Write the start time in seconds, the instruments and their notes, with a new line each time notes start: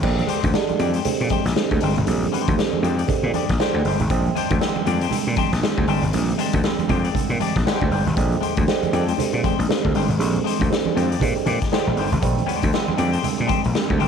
0.02 slap bass A#1, tine electric piano D3 G3 G#3 C4, kick, crash
0.18 closed hi-hat, muted conga, high conga
0.28 clean electric guitar G#3 D4 G4 C5, closed hi-hat
0.44 slap bass D2, kick, closed hi-hat, high conga
0.54 tine electric piano D3 G3 G#3 D4, muted clean electric guitar stroke, snare, muted conga
0.69 muted clean electric guitar stroke, muted slap bass stroke, closed hi-hat, high conga
0.79 slap bass F2, clean electric guitar G#3 D4 G4 D5, closed hi-hat
0.94 clean electric guitar G#3 D4 G4 C5, closed hi-hat
1.05 tine electric piano D3 G3 G#3 C4, muted slap bass stroke, closed hi-hat, muted conga, low conga
1.20 slap bass A#2, muted clean electric guitar stroke, closed hi-hat, muted conga
1.29 clean electric guitar G#3 D4 G4 C5, kick, closed hi-hat, high conga
1.45 slap bass A#1, muted clean electric guitar stroke, snare, closed hi-hat
1.56 tine electric piano D3 G3 G#3 C4, muted clean electric guitar stroke, snare, muted conga
1.71 slap bass D2, muted clean electric guitar stroke, kick, closed hi-hat, muted conga
1.80 slap bass G1, clean electric guitar G#3 D4 G4 C5, open hi-hat
1.96 slap bass G#1, muted clean electric guitar stroke, closed hi-hat, low conga
2.07 slap bass A#1, tine electric piano D3 G3 G#3 C4, closed hi-hat
2.23 closed hi-hat, muted conga, high conga
2.32 clean electric guitar G#3 D4 G4 C5, closed hi-hat
2.48 slap bass D2, kick, closed hi-hat, high conga
2.57 tine electric piano D3 G3 G#3 C4, snare, muted conga
2.73 muted slap bass stroke, muted clean electric guitar stroke, high conga
2.83 slap bass F2, clean electric guitar G#3 D4 G4 C5, closed hi-hat
2.98 clean electric guitar G#3 D4 G4 D5, closed hi-hat
3.08 tine electric piano D3 G3 G#3 C4, muted slap bass stroke, muted clean electric guitar stroke, kick, closed hi-hat, muted conga, low conga
3.23 slap bass A#2, muted clean electric guitar stroke, muted conga
3.33 clean electric guitar G#3 D4 G4 D5, closed hi-hat, high conga
3.49 slap bass A#1, muted clean electric guitar stroke, kick, snare, closed hi-hat
3.59 tine electric piano D3 G3 G#3 C4, clean electric guitar G#3 D4 G4 C5, snare
3.74 slap bass D2, muted clean electric guitar stroke, muted conga
3.85 slap bass G1, clean electric guitar G#3 D4 G4 C5, open hi-hat
4.00 slap bass G#1, muted clean electric guitar stroke, closed hi-hat, low conga
4.10 slap bass A#1, tine electric piano D3 G3 G#3 C4, kick, closed hi-hat
4.26 closed hi-hat, high conga
4.36 clean electric guitar G#3 D4 G4 C5, closed hi-hat
4.50 slap bass D2, kick, closed hi-hat, high conga
4.61 tine electric piano D3 G3 G#3 C4, muted clean electric guitar stroke, snare
4.76 muted clean electric guitar stroke, muted slap bass stroke, muted conga, high conga
4.86 slap bass F2, clean electric guitar G#3 D4 G4 D5, closed hi-hat
5.01 clean electric guitar G#3 D4 G4 C5, closed hi-hat
5.11 tine electric piano D3 G3 G#3 C4, muted slap bass stroke, closed hi-hat, muted conga, low conga
5.27 slap bass A#2, muted clean electric guitar stroke
5.36 clean electric guitar G#3 D4 G4 C5, kick, closed hi-hat, high conga
5.52 slap bass A#1, muted clean electric guitar stroke, snare, closed hi-hat
5.62 tine electric piano D3 G3 G#3 C4, muted clean electric guitar stroke, snare
5.77 slap bass D2, muted clean electric guitar stroke, kick, muted conga
5.87 slap bass G1, clean electric guitar G#3 D4 G4 C5, open hi-hat
6.02 slap bass G#1, muted clean electric guitar stroke, closed hi-hat, low conga
6.13 slap bass A#1, tine electric piano D3 G3 G#3 C4, closed hi-hat
6.28 closed hi-hat, high conga
6.38 clean electric guitar G#3 D4 G4 C5, closed hi-hat
6.53 slap bass D2, kick, closed hi-hat, high conga
6.64 tine electric piano D3 G3 G#3 C4, muted clean electric guitar stroke, snare, muted conga
6.79 muted slap bass stroke, muted clean electric guitar stroke, closed hi-hat, muted conga, high conga
6.89 slap bass F2, clean electric guitar G#3 D4 G4 C5, kick, closed hi-hat, low conga
7.04 clean electric guitar G#3 D4 G4 D5, closed hi-hat
7.15 tine electric piano D3 G3 G#3 C4, muted slap bass stroke, muted clean electric guitar stroke, kick, closed hi-hat, muted conga, low conga
7.30 slap bass A#2, muted clean electric guitar stroke, closed hi-hat, muted conga
7.40 clean electric guitar G#3 D4 G4 D5, closed hi-hat, high conga
7.56 slap bass A#1, muted clean electric guitar stroke, kick, snare, closed hi-hat
7.65 tine electric piano D3 G3 G#3 C4, clean electric guitar G#3 D4 G4 C5, snare
7.81 slap bass D2, muted clean electric guitar stroke, kick, muted conga
7.91 slap bass G1, clean electric guitar G#3 D4 G4 C5, open hi-hat
8.06 slap bass G#1, muted clean electric guitar stroke, closed hi-hat, low conga
8.16 slap bass A#1, tine electric piano D3 G3 G#3 C4, kick, closed hi-hat, muted conga
8.32 closed hi-hat, muted conga, high conga
8.41 clean electric guitar G#3 D4 G4 C5, closed hi-hat
8.57 slap bass D2, kick, closed hi-hat, high conga
8.67 tine electric piano D3 G3 G#3 C4, muted clean electric guitar stroke, snare, muted conga
8.83 muted clean electric guitar stroke, muted slap bass stroke, closed hi-hat, high conga
8.93 slap bass F2, clean electric guitar G#3 D4 G4 D5, closed hi-hat
9.08 clean electric guitar G#3 D4 G4 C5, closed hi-hat
9.18 tine electric piano D3 G3 G#3 C4, muted slap bass stroke, closed hi-hat, muted conga, low conga
9.33 slap bass A#2, muted clean electric guitar stroke, muted conga
9.43 clean electric guitar G#3 D4 G4 C5, kick, closed hi-hat, high conga
9.59 slap bass A#1, muted clean electric guitar stroke, closed hi-hat
9.69 tine electric piano D3 G3 G#3 C4, muted clean electric guitar stroke, snare
9.85 slap bass D2, muted clean electric guitar stroke, kick
9.95 slap bass G1, clean electric guitar G#3 D4 G4 C5, open hi-hat
10.08 slap bass G#1, muted clean electric guitar stroke, closed hi-hat, low conga
10.19 slap bass A#1, tine electric piano D3 G3 G#3 C4, closed hi-hat, muted conga
10.34 muted conga, high conga
10.44 clean electric guitar G#3 D4 G4 C5, closed hi-hat
10.59 slap bass D2, kick, closed hi-hat, high conga
10.70 tine electric piano D3 G3 G#3 C4, muted clean electric guitar stroke, snare, muted conga
10.85 muted clean electric guitar stroke, muted slap bass stroke, muted conga, high conga
10.96 slap bass F2, clean electric guitar G#3 D4 G4 C5, closed hi-hat
11.11 clean electric guitar G#3 D4 G4 D5, closed hi-hat
11.20 slap bass A#2, tine electric piano D3 G3 G#3 C4, muted clean electric guitar stroke, kick, closed hi-hat, muted conga, low conga
11.36 muted clean electric guitar stroke, closed hi-hat, muted conga
11.46 slap bass A#2, clean electric guitar G#3 D4 G4 D5, closed hi-hat, high conga
11.62 muted clean electric guitar stroke, kick, snare, closed hi-hat
11.72 tine electric piano D3 G3 G#3 C4, clean electric guitar G#3 D4 G4 C5, snare
11.87 slap bass A#1, muted clean electric guitar stroke, muted conga
11.96 slap bass G1, clean electric guitar G#3 D4 G4 C5, open hi-hat
12.12 slap bass G#1, muted clean electric guitar stroke, closed hi-hat, low conga
12.22 slap bass A#1, tine electric piano D3 G3 G#3 C4, kick, closed hi-hat
12.38 closed hi-hat, muted conga, high conga
12.46 clean electric guitar G#3 D4 G4 C5, closed hi-hat
12.63 slap bass D2, kick, closed hi-hat, high conga
12.73 tine electric piano D3 G3 G#3 C4, muted clean electric guitar stroke, snare, muted conga
12.88 muted clean electric guitar stroke, muted slap bass stroke, high conga
12.97 slap bass F2, clean electric guitar G#3 D4 G4 D5, closed hi-hat
13.13 clean electric guitar G#3 D4 G4 C5, closed hi-hat
13.24 tine electric piano D3 G3 G#3 C4, muted slap bass stroke, closed hi-hat, muted conga, low conga
13.38 slap bass A#2, muted clean electric guitar stroke, muted conga
13.47 clean electric guitar G#3 D4 G4 C5, kick, closed hi-hat, high conga
13.62 slap bass A#1, muted clean electric guitar stroke, closed hi-hat
13.73 tine electric piano D3 G3 G#3 C4, muted clean electric guitar stroke, snare
13.89 slap bass D2, muted clean electric guitar stroke, kick
13.99 slap bass G1, clean electric guitar G#3 D4 G4 C5, open hi-hat